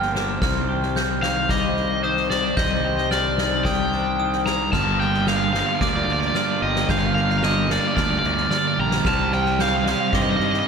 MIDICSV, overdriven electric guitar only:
0, 0, Header, 1, 2, 480
1, 0, Start_track
1, 0, Key_signature, -2, "minor"
1, 0, Tempo, 539568
1, 372, Time_signature, 4, 2, 24, 8
1, 9499, End_track
2, 0, Start_track
2, 0, Title_t, "Overdriven electric guitar"
2, 0, Program_c, 0, 29
2, 0, Note_on_c, 0, 79, 65
2, 97, Note_off_c, 0, 79, 0
2, 1091, Note_on_c, 0, 77, 70
2, 1336, Note_on_c, 0, 75, 71
2, 1338, Note_off_c, 0, 77, 0
2, 1808, Note_off_c, 0, 75, 0
2, 1811, Note_on_c, 0, 72, 66
2, 2047, Note_off_c, 0, 72, 0
2, 2050, Note_on_c, 0, 74, 68
2, 2287, Note_off_c, 0, 74, 0
2, 2290, Note_on_c, 0, 75, 75
2, 2769, Note_off_c, 0, 75, 0
2, 2773, Note_on_c, 0, 74, 72
2, 3245, Note_on_c, 0, 79, 74
2, 3266, Note_off_c, 0, 74, 0
2, 3932, Note_off_c, 0, 79, 0
2, 3969, Note_on_c, 0, 82, 82
2, 4200, Note_off_c, 0, 82, 0
2, 4204, Note_on_c, 0, 81, 80
2, 4430, Note_off_c, 0, 81, 0
2, 4447, Note_on_c, 0, 79, 77
2, 4694, Note_off_c, 0, 79, 0
2, 4698, Note_on_c, 0, 77, 71
2, 4768, Note_off_c, 0, 77, 0
2, 4771, Note_on_c, 0, 77, 59
2, 4834, Note_off_c, 0, 77, 0
2, 4837, Note_on_c, 0, 77, 72
2, 4908, Note_off_c, 0, 77, 0
2, 4917, Note_on_c, 0, 77, 65
2, 4972, Note_off_c, 0, 77, 0
2, 4976, Note_on_c, 0, 77, 69
2, 5035, Note_off_c, 0, 77, 0
2, 5039, Note_on_c, 0, 77, 60
2, 5109, Note_off_c, 0, 77, 0
2, 5121, Note_on_c, 0, 77, 63
2, 5172, Note_off_c, 0, 77, 0
2, 5175, Note_on_c, 0, 74, 71
2, 5235, Note_off_c, 0, 74, 0
2, 5238, Note_on_c, 0, 74, 55
2, 5301, Note_off_c, 0, 74, 0
2, 5304, Note_on_c, 0, 74, 71
2, 5373, Note_off_c, 0, 74, 0
2, 5377, Note_on_c, 0, 74, 62
2, 5444, Note_off_c, 0, 74, 0
2, 5448, Note_on_c, 0, 74, 70
2, 5512, Note_off_c, 0, 74, 0
2, 5516, Note_on_c, 0, 74, 52
2, 5578, Note_off_c, 0, 74, 0
2, 5582, Note_on_c, 0, 74, 56
2, 5650, Note_off_c, 0, 74, 0
2, 5664, Note_on_c, 0, 74, 74
2, 5894, Note_off_c, 0, 74, 0
2, 5898, Note_on_c, 0, 75, 68
2, 6142, Note_off_c, 0, 75, 0
2, 6147, Note_on_c, 0, 77, 81
2, 6213, Note_off_c, 0, 77, 0
2, 6216, Note_on_c, 0, 77, 62
2, 6280, Note_off_c, 0, 77, 0
2, 6283, Note_on_c, 0, 77, 67
2, 6352, Note_off_c, 0, 77, 0
2, 6355, Note_on_c, 0, 77, 60
2, 6412, Note_off_c, 0, 77, 0
2, 6415, Note_on_c, 0, 77, 69
2, 6485, Note_off_c, 0, 77, 0
2, 6505, Note_on_c, 0, 77, 59
2, 6561, Note_off_c, 0, 77, 0
2, 6565, Note_on_c, 0, 77, 62
2, 6618, Note_off_c, 0, 77, 0
2, 6621, Note_on_c, 0, 75, 74
2, 6860, Note_off_c, 0, 75, 0
2, 6864, Note_on_c, 0, 74, 75
2, 6934, Note_off_c, 0, 74, 0
2, 6937, Note_on_c, 0, 74, 55
2, 7002, Note_off_c, 0, 74, 0
2, 7005, Note_on_c, 0, 74, 65
2, 7075, Note_off_c, 0, 74, 0
2, 7079, Note_on_c, 0, 74, 58
2, 7142, Note_off_c, 0, 74, 0
2, 7145, Note_on_c, 0, 74, 68
2, 7208, Note_off_c, 0, 74, 0
2, 7212, Note_on_c, 0, 74, 58
2, 7280, Note_off_c, 0, 74, 0
2, 7283, Note_on_c, 0, 74, 76
2, 7352, Note_off_c, 0, 74, 0
2, 7356, Note_on_c, 0, 74, 61
2, 7416, Note_off_c, 0, 74, 0
2, 7420, Note_on_c, 0, 74, 67
2, 7490, Note_off_c, 0, 74, 0
2, 7495, Note_on_c, 0, 74, 63
2, 7565, Note_off_c, 0, 74, 0
2, 7568, Note_on_c, 0, 74, 73
2, 7629, Note_off_c, 0, 74, 0
2, 7633, Note_on_c, 0, 74, 61
2, 7703, Note_off_c, 0, 74, 0
2, 7715, Note_on_c, 0, 74, 67
2, 7769, Note_off_c, 0, 74, 0
2, 7773, Note_on_c, 0, 74, 55
2, 7832, Note_off_c, 0, 74, 0
2, 7835, Note_on_c, 0, 82, 78
2, 8069, Note_off_c, 0, 82, 0
2, 8073, Note_on_c, 0, 81, 81
2, 8305, Note_off_c, 0, 81, 0
2, 8308, Note_on_c, 0, 79, 80
2, 8523, Note_off_c, 0, 79, 0
2, 8552, Note_on_c, 0, 77, 69
2, 8616, Note_off_c, 0, 77, 0
2, 8619, Note_on_c, 0, 77, 53
2, 8687, Note_off_c, 0, 77, 0
2, 8691, Note_on_c, 0, 77, 63
2, 8760, Note_off_c, 0, 77, 0
2, 8765, Note_on_c, 0, 77, 53
2, 8818, Note_off_c, 0, 77, 0
2, 8822, Note_on_c, 0, 77, 67
2, 8891, Note_off_c, 0, 77, 0
2, 8899, Note_on_c, 0, 77, 54
2, 8962, Note_off_c, 0, 77, 0
2, 8965, Note_on_c, 0, 77, 54
2, 9023, Note_off_c, 0, 77, 0
2, 9027, Note_on_c, 0, 75, 67
2, 9089, Note_off_c, 0, 75, 0
2, 9093, Note_on_c, 0, 75, 54
2, 9159, Note_off_c, 0, 75, 0
2, 9165, Note_on_c, 0, 75, 66
2, 9217, Note_off_c, 0, 75, 0
2, 9221, Note_on_c, 0, 75, 59
2, 9288, Note_off_c, 0, 75, 0
2, 9294, Note_on_c, 0, 75, 67
2, 9350, Note_off_c, 0, 75, 0
2, 9353, Note_on_c, 0, 75, 59
2, 9416, Note_off_c, 0, 75, 0
2, 9419, Note_on_c, 0, 75, 65
2, 9486, Note_off_c, 0, 75, 0
2, 9499, End_track
0, 0, End_of_file